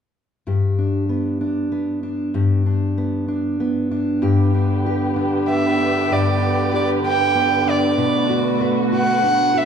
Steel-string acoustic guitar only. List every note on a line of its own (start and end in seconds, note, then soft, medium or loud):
0.47 2.33 G2 soft
0.47 2.34 G4 soft
0.79 1.40 D4 soft
1.09 1.71 B3 soft
1.41 2.03 D4 soft
1.72 2.97 B3 soft
2.03 2.66 D4 soft
2.34 4.21 G2 medium
2.34 4.22 G4 soft
2.66 3.28 D4 soft
2.98 3.60 B3 soft
3.28 3.91 D4 soft
3.60 5.48 B3 soft
3.91 4.54 D4 soft
4.22 6.09 G2 medium
4.22 4.85 G4 soft
4.54 5.16 D4 soft
4.86 6.10 G4 soft
5.16 5.80 D4 soft
5.48 7.35 B3 soft
5.80 6.42 D4 soft
6.10 7.97 G2 medium
6.10 6.72 G4 soft
6.42 7.04 D4 soft
6.74 7.98 G4 medium
7.04 7.66 D4 soft
7.35 9.23 B3 soft
7.66 8.29 D4 soft
7.97 9.65 B2 medium
7.97 8.61 B4 medium
8.30 8.91 F#4 soft
8.61 9.65 B4 medium
8.92 9.53 F#4 soft
9.23 9.65 D4 soft
9.54 9.65 F#4 soft